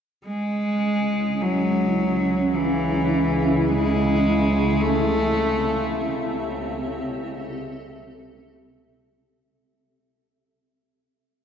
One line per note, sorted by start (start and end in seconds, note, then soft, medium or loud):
0.21 9.51 C#2 medium
0.21 9.51 C#3 medium
0.21 4.80 C#4 medium
0.25 1.43 G#3 medium
0.85 6.63 E4 medium
1.42 2.57 F#3 medium
2.29 4.80 G#4 medium
2.29 9.40 E5 medium
2.55 3.70 E3 medium
3.69 4.83 G#3 medium
4.78 6.53 A3 loud
4.78 9.39 C4 medium
5.27 9.40 G4 medium
6.84 9.40 A4 medium